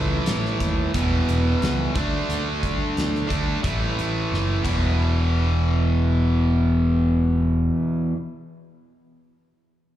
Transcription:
0.00 0.18 C#2 medium
0.00 0.91 A2 medium
0.00 0.91 E3 medium
0.00 0.92 A3 medium
0.26 0.53 A1 medium
0.26 snare loud
0.26 closed hi-hat medium
0.45 snare soft
0.60 0.86 D#2 medium
0.60 kick medium
0.60 closed hi-hat medium
0.93 1.20 E1 medium
0.93 1.92 E2 medium
0.93 1.93 B2 medium
0.93 1.93 E3 medium
0.93 kick loud
0.93 closed hi-hat medium
1.29 1.54 E1 medium
1.29 closed hi-hat medium
1.62 1.87 C#2 medium
1.62 snare medium
1.62 closed hi-hat medium
1.94 2.21 D2 medium
1.94 3.27 D3 medium
1.94 3.28 A3 medium
1.94 3.26 D4 medium
1.94 kick medium
1.94 closed hi-hat soft
2.29 2.80 D2 medium
2.29 closed hi-hat medium
2.63 kick medium
2.63 closed hi-hat medium
2.97 3.23 D2 medium
2.97 snare medium
2.97 closed hi-hat medium
3.15 snare soft
3.27 3.56 D2 medium
3.27 3.61 D3 medium
3.27 3.60 A3 medium
3.27 3.60 D4 medium
3.27 kick medium
3.27 closed hi-hat soft
3.62 3.90 A1 medium
3.62 4.64 A2 medium
3.62 4.64 E3 medium
3.62 4.65 A3 medium
3.62 kick loud
3.62 closed hi-hat medium
3.99 4.24 A1 medium
3.99 closed hi-hat soft
4.32 4.57 F#1 medium
4.32 snare soft
4.63 7.69 E1 medium
4.63 8.13 E2 medium
4.63 8.15 B2 medium
4.63 8.17 E3 medium
4.63 kick medium
4.63 crash medium

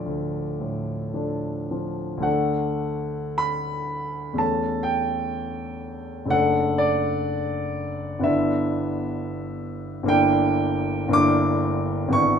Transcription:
0.00 0.61 A2 soft
0.00 1.14 F3 soft
0.00 1.15 D4 soft
0.00 1.15 A4 soft
0.00 1.13 D5 medium
0.06 2.16 D2 soft
0.61 1.48 A2 soft
1.14 1.66 F3 soft
1.14 1.67 D4 soft
1.14 1.67 A4 soft
1.71 2.26 F3 soft
2.17 4.33 D2 soft
2.17 4.34 A3 soft
2.21 4.35 D4 soft
2.21 4.36 A4 soft
2.21 3.40 F#5 medium
3.38 4.39 B5 medium
4.33 6.26 E2 soft
4.33 6.26 A3 soft
4.33 6.28 C#4 soft
4.38 6.29 A4 soft
4.38 4.86 A5 medium
4.83 6.32 G5 medium
6.26 8.19 F#1 medium
6.26 8.20 A3 soft
6.26 8.21 D4 soft
6.30 8.22 A4 soft
6.30 6.80 F#5 medium
6.78 8.26 D5 medium
8.19 10.02 G1 medium
8.19 10.05 B3 soft
8.19 10.06 D4 soft
8.24 10.07 E4 soft
8.24 9.63 E5 medium
10.03 11.07 G1 medium
10.03 11.09 A#3 medium
10.03 11.11 D4 medium
10.08 11.12 E4 soft
10.08 11.15 G5 loud
11.08 12.09 G1 medium
11.08 12.10 A#3 medium
11.08 12.11 D4 medium
11.13 12.12 E4 medium
11.13 12.15 D6 loud
12.08 12.39 G#1 medium
12.08 12.39 B3 soft
12.12 12.39 D4 soft
12.12 12.39 E4 medium
12.12 12.39 C#6 loud

